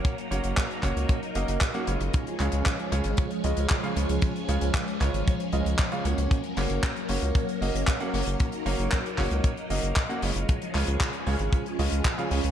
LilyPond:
<<
  \new Staff \with { instrumentName = "Grand piano" } { \time 4/4 \key fis \major \tempo 4 = 115 <ais cis' fis' cis''>16 r16 <ais cis' fis' cis''>8 r8 <ais cis' fis' cis''>8 r8 <ais cis' fis' dis''>8 r16 <ais cis' fis' fis''>16 <cis gis cis' eis' cis''>8 | r8 <cis gis cis' eis' cis''>8 r8 <cis gis cis' eis' cis''>8 r8 <cis gis cis' eis' dis''>8 r16 <cis gis cis' eis' eis''>16 <cis gis cis' eis' cis''>8 | r8 <cis gis cis' eis' cis''>8 r8 <cis gis cis' eis' cis''>8 r8 <cis gis cis' eis' dis''>8 r16 <cis gis cis' eis' eis''>16 <ais cis' fis' cis''>8 | r8 <ais cis' fis' cis''>8 r8 <ais cis' fis' cis''>8 r8 <ais cis' fis' dis''>8 r16 <ais cis' fis' fis''>16 <ais cis' fis' cis''>8 |
r8 <ais cis' fis' cis''>8 r8 <ais cis' fis' cis''>8 r8 <ais cis' fis' dis''>8 r16 <ais cis' fis' fis''>16 <cis gis cis' eis' cis''>8 | r8 <cis gis cis' eis' cis''>8 r8 <cis gis cis' eis' cis''>8 r8 <cis gis cis' eis' dis''>8 r16 <cis gis cis' eis' eis''>16 <cis gis cis' eis' cis''>8 | }
  \new Staff \with { instrumentName = "String machine" } { \time 4/4 \key fis \major << { <fis ais ais'>1 | <eis gis gis'>1~ | <eis gis gis'>1 | <fis ais ais'>1~ |
<fis ais ais'>1 | <eis gis gis'>1 | } \\ { dis'1 | cis'1~ | cis'1~ | cis'1 |
dis'1 | cis'1 | } >> }
  \new Staff \with { instrumentName = "Analog synth bass" } { \clef bass \time 4/4 \key fis \major r8 fis,,16 fis,,16 r8 fis,,16 cis,16 r8 fis,,16 fis,,16 r8 fis,,16 fis,,16 | r8 cis,16 cis,16 r8 cis,16 gis,,16 r8 cis,16 cis,16 r8 cis,16 cis,16 | r8 cis,16 cis,16 r8 cis,16 gis,,16 r8 cis,16 cis,16 r8 cis,16 cis,16 | r8 fis,,16 fis,,16 r8 fis,,16 cis,16 r8 fis,,16 fis,,16 r8 fis,,16 fis,,16 |
r8 fis,,16 fis,,16 r8 fis,,16 cis,16 r8 fis,,16 fis,,16 r8 fis,,16 fis,,16 | r8 cis,16 cis,16 r8 cis,16 gis,,16 r8 cis,16 cis,16 r8 cis,16 cis,16 | }
  \new DrumStaff \with { instrumentName = "Drums" } \drummode { \time 4/4 <hh bd>16 hh16 hh16 hh16 <hc hh bd>16 hh16 <hc hh bd>16 hh16 <hh bd>16 hh16 hh16 hh16 <hc hh bd>16 hh16 hh16 hh16 | <hh bd>16 hh16 <hc hh>16 hh16 <hc hh bd>16 hh16 hh16 hh16 <hh bd>16 hh16 hh16 hh16 <hc hh bd>16 hh16 hh16 hh16 | <hh bd>16 hh16 hh16 hh16 <hc hh bd>16 hh16 <hc hh bd>16 hh16 <hh bd>16 hh16 hh16 hh16 <hc hh bd>16 hh16 hh16 hh16 | <hh bd>16 hh16 <hc hho>16 hh16 <hc hh bd>16 hh16 hho16 hh16 <hh bd>16 hh16 hho16 hh16 <hc hh bd>16 hh16 hho16 hh16 |
<hh bd>16 hh16 hho16 hh16 <hc hh bd>16 hh16 <hc hho bd>16 hh16 <hh bd>16 hh16 hho16 hh16 <hc hh bd>16 hh16 hho16 hh16 | <hh bd>16 hh16 <hc hho>16 hh16 <hc hh bd>16 hh16 hho16 hh16 <hh bd>16 hh16 hho16 hh16 <hc hh bd>16 hh16 hho16 hh16 | }
>>